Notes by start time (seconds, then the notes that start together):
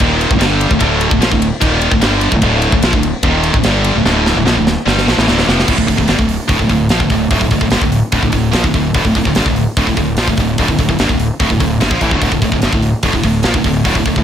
0.00 D#1 D#2 A#2 D#3, kick
0.21 ride
0.30 D1 D2 A2, kick
0.39 G1 G2 D3 G3, snare, ride
0.61 ride
0.70 D1 D2 A2, kick
0.79 D1 D2 A2 D3, kick, ride
1.01 ride
1.11 D1 D2 A2, kick
1.20 A#1 A#2 F3, snare, ride
1.31 D1 D2 A2, kick
1.42 ride
1.61 D#1 D#2 A#2 D#3, kick, ride
1.81 ride
1.91 D1 D2 A2, kick
2.01 G1 G2 D3 G3, snare, ride
2.21 ride
2.32 D1 D2 A2, kick
2.42 D1 D2 A2 D3, kick, ride
2.62 ride
2.72 D1 D2 A2, kick
2.82 A#1 A#2 F3, snare, ride
2.92 D1 D2 A2, kick
3.03 ride
3.22 D#1 D#2 A#2 D#3, kick, ride
3.44 ride
3.54 D1 D2 A2, kick
3.64 G1 G2 D3 G3, snare, ride
3.84 ride
3.95 D1 D2 A2
4.05 D1 D2 A2 D3, snare
4.26 snare
4.36 D1 D2 A2
4.45 A#1 A#2 F3, snare
4.57 D1 D2 A2
4.67 snare
4.86 G1 G2 D3 G3, snare
4.98 snare
5.06 A#1 A#2 F3, snare
5.17 A1 A2 E3, snare
5.27 D1 D2 A2 D3, snare
5.39 snare
5.47 F1 F2 C3 F3, snare
5.59 snare
5.66 D1 D2 A2, kick, crash
5.77 D1 D2 A2, kick
5.87 D1 D2 A2, kick, open hi-hat
5.97 D1 D2 A2, kick
6.08 G1 G2 D3, snare, open hi-hat
6.19 D1 D2 A2, kick
6.29 open hi-hat
6.48 D1 D2 A2, kick, open hi-hat
6.59 D1 D2 A2, kick
6.69 D1 D2 A2, kick, open hi-hat
6.89 A#1 A#2 F3, snare, open hi-hat
6.99 D1 D2 A2, kick
7.10 D1 D2 A2, kick, open hi-hat
7.31 D1 D2 A2, kick, open hi-hat
7.41 D1 D2 A2, kick
7.51 D1 D2 A2, kick, open hi-hat
7.61 D1 D2 A2, kick
7.71 G1 G2 D3, snare, open hi-hat
7.81 D1 D2 A2, kick
7.92 open hi-hat
8.12 D1 D2 A2, kick, open hi-hat
8.22 D1 D2 A2, kick
8.32 D1 D2 A2, kick, open hi-hat
8.52 A#1 A#2 F3, snare, open hi-hat
8.63 D1 D2 A2, kick
8.74 D1 D2 A2, kick, open hi-hat
8.94 D1 D2 A2, kick, open hi-hat
9.04 D1 D2 A2, kick
9.15 D1 D2 A2, kick, open hi-hat
9.25 D1 D2 A2, kick
9.35 G1 G2 D3, snare, open hi-hat
9.45 D1 D2 A2, kick
9.56 open hi-hat
9.77 D1 D2 A2, kick, open hi-hat
9.87 D1 D2 A2, kick
9.97 D1 D2 A2, kick, open hi-hat
10.17 A#1 A#2 F3, snare, open hi-hat
10.28 D1 D2 A2, kick
10.37 D1 D2 A2, kick, open hi-hat
10.58 D1 D2 A2, kick, open hi-hat
10.68 D1 D2 A2, kick
10.78 D1 D2 A2, kick, open hi-hat
10.89 D1 D2 A2, kick
10.99 G1 G2 D3, snare, open hi-hat
11.09 D1 D2 A2, kick
11.20 open hi-hat
11.40 D1 D2 A2, kick, open hi-hat
11.50 D1 D2 A2, kick
11.60 D1 D2 A2, kick, open hi-hat
11.81 G1 G2 D3, snare, open hi-hat
11.90 A#1 A#2 F3, kick
12.01 A1 A2 E3, kick, open hi-hat
12.11 D1 D2 A2, kick
12.21 D1 D2 A2, kick, open hi-hat
12.32 D1 D2 A2, kick
12.42 D1 D2 A2, kick, open hi-hat
12.52 D1 D2 A2, kick
12.62 G1 G2 D3, snare, open hi-hat
12.72 D1 D2 A2, kick
12.82 open hi-hat
13.03 D1 D2 A2, kick, open hi-hat
13.13 D1 D2 A2, kick
13.24 D1 D2 A2, kick, open hi-hat
13.43 A#1 A#2 F3, snare, open hi-hat
13.54 D1 D2 A2, kick
13.64 D1 D2 A2, kick, open hi-hat
13.85 D1 D2 A2, kick, open hi-hat
13.95 D1 D2 A2, kick
14.06 D1 D2 A2, kick, open hi-hat
14.16 D1 D2 A2, kick